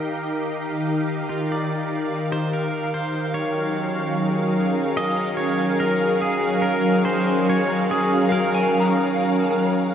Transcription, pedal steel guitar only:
1.29 1.49 F4 medium
1.52 2.28 D5 medium
2.32 2.52 C5 medium
2.53 2.94 A#4 medium
2.94 3.34 C5 medium
3.34 4.97 C#5 medium
4.97 5.37 D#5 loud
5.37 5.80 C#5 medium
5.80 6.22 A#4 loud
6.22 6.64 G#4 medium
6.62 7.04 A#4 medium
7.05 7.47 C5 medium
7.50 7.90 C#5 medium
7.91 8.32 G#4 medium
8.32 9.11 A#4 medium

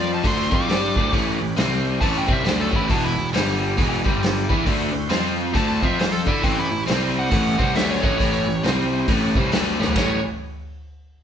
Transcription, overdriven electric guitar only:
0.00 0.23 F3 loud
0.00 0.23 C4 medium
0.00 0.24 F4 loud
0.23 0.50 D3 medium
0.23 0.51 A3 medium
0.23 0.51 D4 medium
0.51 0.67 F3 medium
0.51 0.68 C4 medium
0.51 0.68 F4 medium
0.68 0.95 G3 medium
0.68 0.95 D4 loud
0.68 0.96 G4 loud
0.96 1.12 D3 medium
0.96 1.12 A3 medium
0.96 1.13 D4 medium
1.12 1.39 A2 medium
1.12 1.40 E3 medium
1.12 1.40 A3 loud
1.40 1.54 A2 medium
1.40 1.54 E3 medium
1.57 2.01 C3 medium
1.57 2.01 G3 medium
1.57 2.01 C4 loud
2.01 2.28 A2 medium
2.01 2.28 E3 loud
2.01 2.28 A3 loud
2.28 2.44 C3 medium
2.28 2.44 G3 medium
2.28 2.45 C4 medium
2.45 2.70 D3 medium
2.45 2.70 A3 medium
2.45 2.71 D4 medium
2.70 2.87 A2 medium
2.70 2.87 E3 medium
2.70 2.88 A3 medium
2.87 3.15 E2 medium
2.87 3.15 B2 medium
2.87 3.16 E3 loud
3.16 3.30 E2 medium
3.16 3.30 B2 medium
3.34 3.77 G2 medium
3.34 3.78 D3 medium
3.34 3.78 G3 loud
3.78 4.04 E2 medium
3.78 4.04 B2 medium
3.78 4.05 E3 loud
4.04 4.48 G2 medium
4.04 4.48 D3 medium
4.04 4.49 G3 medium
4.49 4.65 E3 medium
4.49 4.66 B3 medium
4.49 4.66 E4 medium
4.66 4.92 D3 loud
4.66 4.92 A3 loud
4.66 4.93 D4 loud
4.93 5.07 D3 medium
4.93 5.07 A3 medium
5.10 5.53 F3 medium
5.10 5.53 C4 medium
5.10 5.54 F4 medium
5.54 5.81 D3 medium
5.54 5.81 A3 loud
5.54 5.82 D4 loud
5.82 6.26 F3 medium
5.82 6.25 C4 medium
5.82 6.26 F4 loud
6.26 6.41 D4 medium
6.26 6.42 A4 medium
6.26 6.43 D5 medium
6.41 6.69 A2 medium
6.41 6.69 E3 loud
6.41 6.69 A3 loud
6.70 6.84 A2 medium
6.70 6.84 E3 medium
6.86 7.30 C3 medium
6.86 7.31 G3 loud
6.86 7.31 C4 loud
7.31 7.58 A2 loud
7.31 7.58 E3 loud
7.31 7.58 A3 loud
7.58 7.75 C3 medium
7.58 7.75 G3 loud
7.58 7.75 C4 loud
7.76 8.01 D3 loud
7.76 8.01 A3 medium
7.76 8.02 D4 loud
8.01 8.17 A2 medium
8.01 8.17 E3 medium
8.01 8.18 A3 loud
8.18 8.46 A2 medium
8.18 8.45 E3 medium
8.18 8.46 A3 loud
8.47 8.60 A2 medium
8.47 8.60 E3 medium
8.64 9.07 C3 medium
8.64 9.07 G3 medium
8.64 9.08 C4 loud
9.07 9.34 A2 medium
9.07 9.35 E3 medium
9.07 9.35 A3 medium
9.36 9.51 C3 medium
9.36 9.52 G3 medium
9.36 9.52 C4 medium
9.52 9.78 D3 medium
9.52 9.78 A3 medium
9.52 9.79 D4 loud
9.79 9.95 A2 medium
9.79 9.95 E3 medium
9.79 9.96 A3 medium
9.96 10.18 A2 medium
9.96 10.19 E3 loud
9.96 10.19 A3 loud

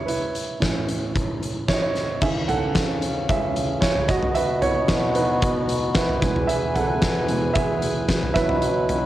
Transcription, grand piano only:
0.00 0.08 E4 medium
0.00 1.68 C#5 medium
0.06 1.64 E4 medium
0.06 1.63 B4 medium
0.60 2.17 A2 soft
0.60 2.17 E3 soft
0.60 2.18 C#4 soft
1.68 1.75 E4 medium
1.68 1.75 C#5 medium
1.73 1.81 D#5 medium
1.82 2.19 E4 medium
1.82 2.19 C#5 medium
2.22 3.28 C#3 soft
2.22 4.05 D#3 medium
2.22 3.28 E3 soft
2.22 2.29 G#4 medium
2.22 2.28 E5 medium
2.48 3.25 A4 medium
2.48 3.31 F#5 medium
3.29 3.53 C#3 soft
3.29 3.53 E3 soft
3.29 3.54 G#3 soft
3.29 3.79 G#4 medium
3.29 3.79 E5 medium
3.81 4.07 E4 medium
3.81 4.09 C#5 medium
4.08 4.34 F#4 medium
4.08 4.33 D#5 medium
4.35 4.42 B4 medium
4.35 4.41 E5 medium
4.62 5.13 E4 medium
4.62 5.17 C#5 medium
4.89 6.19 B2 soft
4.89 6.19 E3 soft
4.89 6.19 F#3 medium
5.15 5.93 D#4 medium
5.15 5.94 B4 medium
5.95 6.46 E4 medium
5.95 6.50 B4 medium
6.22 6.98 E2 medium
6.22 6.99 B2 medium
6.22 6.99 G#3 medium
6.47 6.74 G#4 medium
6.47 6.73 E5 medium
6.74 7.26 A4 medium
6.74 7.25 F#5 medium
7.28 7.53 E2 soft
7.28 7.53 B2 soft
7.28 7.53 G#3 soft
7.54 8.06 G#4 medium
7.54 8.04 E5 medium
8.34 8.71 B2 soft
8.34 8.71 E3 soft
8.34 8.71 F#3 medium
8.34 9.06 B4 medium
8.34 9.06 E5 loud

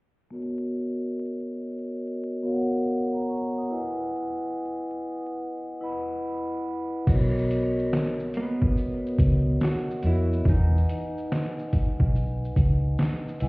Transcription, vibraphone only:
0.31 1.62 B3 medium
0.31 1.63 F#4 medium
0.31 1.63 A#4 medium
0.31 1.63 C#5 medium
0.31 1.64 D#5 medium
2.43 3.44 B3 medium
2.43 3.45 F#4 medium
2.43 3.45 A#4 medium
2.43 2.86 C#5 medium
2.43 2.52 F5 medium
2.52 2.89 F#5 medium
3.13 3.27 C#5 medium
3.13 3.27 A#5 medium
3.29 3.54 C#6 medium
3.57 3.71 F#5 medium
3.57 3.96 D#6 medium
3.70 5.01 E4 medium
3.70 5.01 B4 medium
3.70 5.01 D#5 medium
3.70 5.02 F#5 medium
3.70 5.02 G#5 medium
5.81 6.83 E4 medium
5.81 6.83 B4 medium
5.81 6.83 D#5 medium
5.81 6.84 F#5 medium
5.81 6.84 B5 medium
7.07 8.38 B3 medium
7.07 8.39 F#4 medium
7.07 8.39 A#4 medium
7.07 8.40 C#5 medium
7.07 8.40 D#5 medium
10.03 10.39 B3 medium
10.03 10.39 F#4 medium
10.03 10.39 A#4 medium
10.03 10.40 C#5 medium
10.03 10.40 D#5 medium
10.45 11.77 D#4 medium
10.45 11.77 B4 medium
10.45 11.77 D#5 medium
10.45 11.78 F#5 medium
10.45 11.78 G#5 medium
13.40 13.48 E4 medium
13.40 13.48 B4 medium
13.40 13.48 D#5 medium
13.40 13.48 F#5 medium
13.40 13.48 G#5 loud

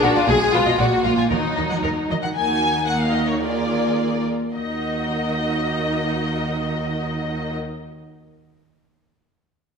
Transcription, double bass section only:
0.04 0.09 A#1 medium
0.28 0.33 B1 medium
0.54 0.59 B1 medium
0.79 0.84 A#1 medium
1.04 1.10 A#1 soft
1.30 1.36 D#2 medium
1.57 1.62 D#2 soft
1.84 1.89 D#2 medium
2.11 2.16 D#2 soft
2.37 4.27 D#2 soft
4.54 7.56 D#2 soft

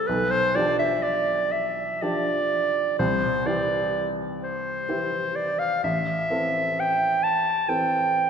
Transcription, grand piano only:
0.09 0.55 B1 medium
0.55 1.97 F3 soft
0.55 1.97 D4 soft
0.55 1.97 G4 soft
2.02 2.94 F3 soft
2.02 2.94 D4 soft
2.02 2.95 G4 medium
2.99 3.45 C2 medium
3.45 4.84 E3 soft
3.45 4.84 E4 soft
3.45 4.85 G4 medium
4.89 5.79 E3 soft
4.89 5.79 E4 medium
4.89 5.79 G4 medium
5.84 6.29 A1 medium
6.30 7.64 E3 soft
6.30 7.65 C4 soft
6.30 7.65 A4 soft
7.68 8.30 E3 soft
7.68 8.30 C4 soft
7.68 8.30 A4 soft

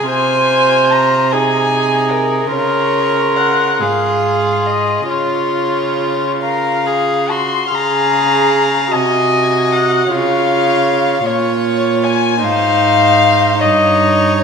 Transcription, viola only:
0.10 1.34 C5 medium
1.32 2.53 G#4 medium
2.53 3.82 A#4 medium
3.80 5.10 G#4 soft
5.11 7.05 F4 soft
7.72 8.89 G#4 medium
8.93 10.11 F#4 soft
10.10 11.26 F4 medium
11.26 12.41 F4 soft
12.44 13.58 D#4 medium
13.60 14.44 D#4 medium

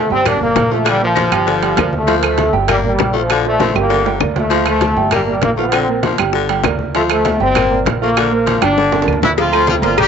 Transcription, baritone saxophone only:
0.25 0.50 A#3 medium
0.70 0.78 A3 medium
0.84 1.01 D3 loud
1.15 1.32 F3 medium
1.46 1.81 D3 medium
2.07 2.42 F3 medium
2.68 2.92 A#3 medium
3.13 3.21 A3 medium
3.30 3.46 D3 medium
3.60 3.76 F3 medium
3.89 4.25 D3 medium
4.50 4.85 F3 medium
5.12 5.36 A#3 medium
5.57 5.65 A3 medium
5.72 5.88 D3 medium
6.05 6.20 F3 medium
6.34 6.69 D3 medium
6.95 7.30 F3 medium
7.56 7.80 A#3 medium
8.02 8.10 A3 medium
8.17 8.32 D3 medium
8.46 8.62 F3 medium
8.78 9.12 D3 medium
9.53 9.77 F3 medium
9.99 10.08 G3 medium

